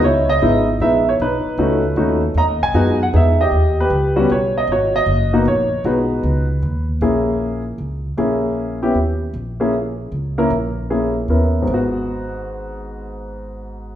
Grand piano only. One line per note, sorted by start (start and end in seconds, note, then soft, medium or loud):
0.04 0.41 E4 medium
0.04 0.30 C#5 medium
0.29 0.65 D#5 medium
0.42 0.65 G#3 medium
0.42 0.65 B3 medium
0.42 0.65 D#4 medium
0.42 0.65 E4 medium
0.81 1.04 G#3 medium
0.81 1.04 B3 medium
0.81 1.04 D#4 medium
0.81 1.04 E4 medium
0.81 1.08 E5 medium
1.09 1.14 C#5 medium
1.22 1.57 D#4 medium
1.22 2.20 B4 medium
1.58 1.81 A3 medium
1.58 1.82 C#4 medium
1.58 1.82 D#4 medium
1.58 1.82 F#4 medium
1.97 2.20 A3 medium
1.97 2.20 C#4 medium
1.97 2.20 D#4 medium
1.97 2.20 F#4 medium
2.38 2.97 D#5 medium
2.38 2.43 A#5 medium
2.63 3.02 G#5 medium
2.74 2.97 G#3 medium
2.74 2.98 B3 medium
2.74 2.98 D#4 medium
2.74 2.98 F#4 medium
3.03 3.08 F#5 medium
3.13 3.36 G#3 soft
3.13 3.37 B3 soft
3.13 3.37 D#4 soft
3.13 3.37 G#4 medium
3.13 3.41 E5 medium
3.41 3.80 G4 medium
3.41 3.76 D#5 medium
3.80 4.28 G4 medium
3.80 4.33 B4 medium
4.16 4.28 G3 medium
4.16 4.28 B3 medium
4.16 4.29 C#4 medium
4.16 4.28 F#4 medium
4.32 4.57 C#5 medium
4.58 4.70 D#5 medium
4.72 5.31 F#4 medium
4.72 4.97 C#5 medium
4.96 5.31 D#5 medium
5.33 5.45 A#3 medium
5.33 5.45 B3 medium
5.33 5.45 D#4 medium
5.33 5.45 F#4 medium
5.48 5.87 C#5 medium
5.85 6.44 G#3 medium
5.85 6.44 B3 medium
5.85 6.44 D#4 medium
5.85 6.44 F#4 medium
5.85 6.85 B4 medium
7.02 7.61 A#3 medium
7.02 7.61 C#4 medium
7.02 7.61 E4 medium
7.02 7.61 G#4 medium
8.17 8.77 A#3 medium
8.17 8.77 C#4 medium
8.17 8.77 E4 medium
8.17 8.77 G#4 medium
8.82 8.94 B3 medium
8.82 8.94 C#4 medium
8.82 8.95 E4 medium
8.82 8.94 G4 medium
9.60 9.72 A#3 medium
9.60 9.72 C#4 medium
9.60 9.72 E4 medium
9.60 9.72 G#4 medium
10.38 10.50 A#3 medium
10.38 10.50 C#4 medium
10.38 10.50 E4 medium
10.38 10.50 A#4 medium
10.90 11.13 A#3 medium
10.90 11.13 C#4 soft
10.90 11.13 E4 medium
10.90 11.13 G#4 medium
11.30 11.68 B3 medium
11.30 11.68 C#4 soft
11.30 11.68 E4 soft
11.30 11.68 A#4 medium
11.62 13.96 G#2 medium
11.62 13.96 G#3 medium
11.70 13.96 B3 medium
11.70 13.96 F#4 medium